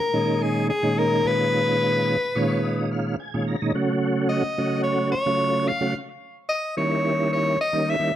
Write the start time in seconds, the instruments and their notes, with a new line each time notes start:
Already playing: soprano saxophone A#4
0.13 tonewheel organ A#2 D#3 G#3 C#4 D#4
0.43 soprano saxophone G#4
0.70 soprano saxophone G#4
0.83 tonewheel organ A#2 D#3 G#3 C#4 D#4
0.99 soprano saxophone A#4
1.24 tonewheel organ A#2 D#3 G#3 C#4 F4, soprano saxophone B4
2.35 tonewheel organ A#2 D#3 G#3 C#4 F4 C#5
2.64 tonewheel organ D#5
2.91 tonewheel organ F5
3.20 tonewheel organ G#5
3.34 tonewheel organ A#2 D#3 G#3 C#4 F4
3.48 tonewheel organ A#5
3.62 tonewheel organ A#2 D#3 G#3 C#4 D#4
3.74 tonewheel organ C#3 F#3 A3 C#4 F#4
4.29 soprano saxophone D#5
4.58 tonewheel organ C#3 F#3 A3 C#4 F#4
4.83 soprano saxophone C#5
5.12 soprano saxophone C#5
5.26 tonewheel organ C#3 F#3 A3 C#4 F4
5.68 soprano saxophone F5
5.80 tonewheel organ C#3 F#3 A3 C#4 F#4
6.49 soprano saxophone D#5
6.77 tonewheel organ D#3 G3 A#3 C#4 E4, soprano saxophone C#5
7.33 soprano saxophone C#5
7.61 soprano saxophone D#5
7.73 tonewheel organ D#3 G3 A#3 C#4 D#4
7.89 soprano saxophone E5
7.99 tonewheel organ D#3 G3 A#3 C#4 E4